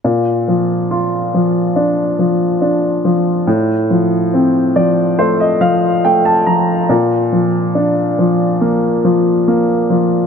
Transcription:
<<
  \new Staff \with { instrumentName = "Upright piano" } { \time 4/4 \key bes \major \tempo 4 = 70 r1 | r4. d''8 c''16 ees''16 f''8 g''16 a''16 bes''8 | r1 | }
  \new Staff \with { instrumentName = "Upright piano" } { \clef bass \time 4/4 \key bes \major bes,8 f8 f'8 f8 d'8 f8 d'8 f8 | a,8 f8 c'8 f8 a8 f8 a8 f8 | bes,8 f8 d'8 f8 bes8 f8 bes8 f8 | }
>>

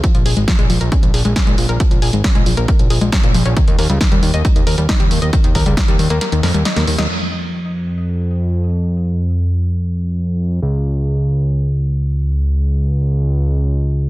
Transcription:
<<
  \new Staff \with { instrumentName = "Synth pluck" } { \clef bass \time 4/4 \key ees \mixolydian \tempo 4 = 136 f16 f16 aes'16 aes16 f16 aes16 f16 bes'16 des'16 f16 aes'16 aes16 des'16 aes16 f16 bes'16 | f16 f16 aes'16 aes16 des'16 aes16 f16 bes16 bes16 f16 aes'16 aes16 des'16 bes16 f16 des'16 | ees16 ees16 bes'16 g16 ees16 g16 ees16 ees''16 ees'16 ees16 bes'16 g16 ees'16 g16 ees16 ees''16 | ees16 ees16 bes'16 g16 ees'16 g16 ees16 bes16 bes16 ees16 bes'16 g16 ees'16 bes16 ees16 ees'16 |
r1 | r1 | r1 | r1 | }
  \new Staff \with { instrumentName = "Analog synth bass" } { \clef bass \time 4/4 \key ees \mixolydian r16 bes,,16 bes,,16 aes,,16 r16 bes,,16 bes,,16 bes,,16 r16 bes,,16 bes,,16 bes,,16 r16 bes,,16 bes,,16 bes,,16 | r16 bes,,16 bes,,16 aes,,16 r16 bes,,16 bes,,16 bes,,16 r16 bes,,16 bes,,16 bes,,16 r16 bes,,16 bes,,16 bes,,16 | r16 ees,16 ees,16 des,16 r16 ees,16 ees,16 ees,16 r16 ees,16 ees,16 ees,16 r16 ees,16 ees,16 ees,16 | r16 ees,16 ees,16 des,16 r16 ees,16 ees,16 ees,16 r16 ees,16 f,16 ees,16 r16 ees,16 ees,16 ees,16 |
f,1~ | f,1 | des,1~ | des,1 | }
  \new DrumStaff \with { instrumentName = "Drums" } \drummode { \time 4/4 <hh bd>16 hh16 hho16 hh16 <hh bd sn>16 hh16 hho16 hh16 <hh bd>16 hh16 hho16 hh16 <hh bd sn>16 hh16 hho16 hh16 | <hh bd>16 hh16 hho16 hh16 <hh bd sn>16 hh16 hho16 hh16 <hh bd>16 hh16 hho16 hh16 <hh bd sn>16 hh16 hho16 hh16 | <hh bd>16 hh16 hho16 hh16 <hh bd sn>16 hh16 hho16 hh16 <hh bd>16 hh16 hho16 hh16 <hh bd sn>16 hh16 hho16 hh16 | <hh bd>16 hh16 <hho bd>16 hh16 <hh bd sn>16 hh16 hho16 hh16 <hh sn>16 hh16 <hho sn>16 hh16 <hh sn>16 <hh sn>16 hho16 <hh sn>16 |
cymc4 r4 r4 r4 | r4 r4 r4 r4 | r4 r4 r4 r4 | r4 r4 r4 r4 | }
>>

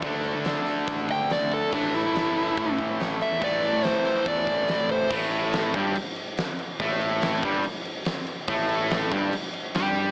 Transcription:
<<
  \new Staff \with { instrumentName = "Lead electric guitar" } { \time 4/4 \key g \mixolydian \tempo 4 = 142 r2 r8 g''8 d''8 a'8 | d'8 e'2 r4 e''8 | d''4 c''8 c''8 d''4. c''8 | r1 |
r1 | r1 | }
  \new Staff \with { instrumentName = "Distorted electric guitar" } { \clef bass \time 4/4 \key g \mixolydian <d a d'>1 | <a, e a>1 | <a, e a>1 | <a, a>4. <g, g>8 r2 |
<a, a>4. <g, g>8 r2 | <a, a>4. <g, g>8 r4 <g g'>4 | }
  \new Staff \with { instrumentName = "Fingered electric bass" } { \clef bass \time 4/4 \key g \mixolydian d,8. d8 r8. a,,8 d,8. d,8 r16 | a,,8. g,,4~ g,,16 a,4 a,,8 r16 e,16 | a,,8. a,8 r8. e,8 a,,8. a,,8 r16 | a,,4. g,,8 r2 |
a,,4. g,,8 r2 | a,,4. g,,8 r4 g,4 | }
  \new DrumStaff \with { instrumentName = "Drums" } \drummode { \time 4/4 <hho bd>8 hho8 <hho sn>8 hho8 <hho bd>8 <hho bd>8 <hho sn>8 <hho bd>8 | <hho bd>8 hho8 <hho sn>8 hho8 <hho bd>8 <hho bd>8 <hho sn>8 hho8 | <hho bd>8 hho8 <hho sn>8 hho8 <hho bd>8 <hho bd>8 <hho sn>8 <hho bd>8 | <cymc bd>8 cymc8 <cymc sn>8 <cymc bd>8 cymc8 cymc8 <cymc sn>8 cymc8 |
<cymc bd>8 cymc8 <cymc sn>8 <cymc bd>8 cymc8 cymc8 <cymc sn>8 cymc8 | <cymc bd>8 cymc8 <cymc sn>8 <cymc bd>8 cymc8 cymc8 <cymc sn>8 cymc8 | }
>>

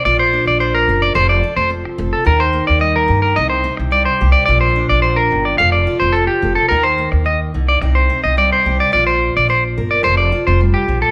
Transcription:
<<
  \new Staff \with { instrumentName = "Clean electric guitar" } { \time 4/4 \key bes \major \tempo 4 = 108 d''16 c''8 d''16 c''16 bes'8 d''16 c''16 d''8 c''16 r8. a'16 | bes'16 c''8 d''16 ees''16 bes'8 bes'16 ees''16 c''8 r16 d''16 c''8 d''16 | d''16 c''8 d''16 c''16 bes'8 d''16 f''16 d''8 c''16 a'16 g'8 a'16 | bes'16 c''8 r16 ees''16 r8 d''16 r16 c''8 ees''16 d''16 c''8 d''16 |
d''16 c''8 d''16 c''16 r8 d''16 c''16 d''8 c''16 r16 g'8 a'16 | }
  \new Staff \with { instrumentName = "Steel-string acoustic guitar" } { \time 4/4 \key bes \major << { f'8 d'4 bes'8 a'8 f'4 a'8 | ees'8 bes4 g'8 ees'8 c'4 g'8 | f'8 d'4. a'8 f'4 a'8 | ees'8 bes4. ees'8 c'4 g'8 |
f'4. bes'8 a'8 f'4. | } \\ { bes,4 f4 f4 c'4 | ees4 g4 c4 g4 | bes,4 d8 ees8 f2 | ees4 ees8 d8 c4 g4 |
bes,4 f4 f4 g8 f8 | } >> }
  \new Staff \with { instrumentName = "Upright bass" } { \clef bass \time 4/4 \key bes \major bes,,8. bes,,8. ges,,8 f,,8 r16 f,,8 r16 f,,16 r16 | ees,8. ees,8. g,8 c,8 r16 c,8 r16 c,16 r16 | bes,,8. bes,,8. g,,8 f,,8 r16 f,,8 r16 f,,16 r16 | ees,8. ees,8. c,8 c,8 r16 c,8 r16 c,16 r16 |
bes,,8. bes,,8. g,,8 f,,8 r16 f,,8 r16 bes,,16 r16 | }
>>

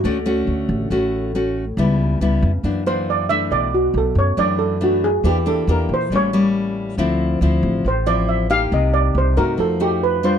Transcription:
<<
  \new Staff \with { instrumentName = "Steel pan" } { \time 4/4 \key d \lydian \tempo 4 = 138 fis'2 r2 | r2 r8 c''8 d''8 e''8 | d''8 fis'8 a'8 cis''8 d''8 a'8 fis'8 gis'8 | g'8 a'8 bes'8 c''8 cis''8 r4. |
r2 c''8 d''8 e''8 f''8 | ees''8 d''8 c''8 bes'8 a'8 g'8 b'8 c''8 | }
  \new Staff \with { instrumentName = "Nylon-string guitar" } { \time 4/4 \key d \lydian << { <a cis' fis'>8 <a cis' fis'>4. <a cis' fis'>4 <a cis' fis'>8 r8 | <g b e'>4 <g b e'>8 r8 <e ais d'>8 <e ais d'>4 <e a d'>8~ | <e a d'>8 r4. <e a d'>4 <e a d'>8 r8 | <bes d' g'>8 <bes d' g'>8 <bes d' g'>8 r8 <g bes cis'>8 <g bes cis'>4. |
<f c' e'>4 <f c' e'>4 r8 <f c' e'>4 <bes dis' g'>8~ | <bes dis' g'>4. <a ees' fis'>4 <a ees' ges'>4 <g d' f'>8 | } \\ { d2 a,2 | cis2 fis,2 | b,2 fis,2 | e2 a,2 |
d2 a,2 | c2 f2 | } >> }
  \new Staff \with { instrumentName = "Upright bass" } { \clef bass \time 4/4 \key d \lydian d,4 d,8 a,,8 a,,2 | cis,4 cis,8 f,8 fis,2 | b,,4 b,,8 fis,8 fis,2 | e,4 e,8 bes,8 a,,2 |
d,4 d,8 a,,8 a,,2 | c,4 c,8 g,8 f,2 | }
>>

